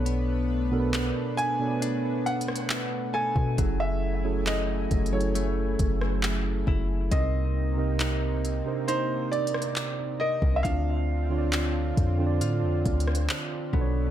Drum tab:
HH |x-----------x-----x-----x-----x-x-x-x-----------|x-----------x-----x-x-x-x-----x-----x-----------|x-----------x-----x-----x-----x-x-x-x-----------|x-----------x-----x-----x-----x-x-x-x-----------|
CP |------------x-----------------------x-----------|------------x-----------------------x-----------|------------x-----------------------x-----------|------------x-----------------------x-----------|
SD |---------------------------------r--------------|---------------------------------r--------------|---------------------------------r--------------|---------------------------------r--------------|
BD |---------------------------------------------o--|o-----------------o-----------o-----------o-----|o--------------------------------------------o--|o-----------------o-----------o-----------o-----|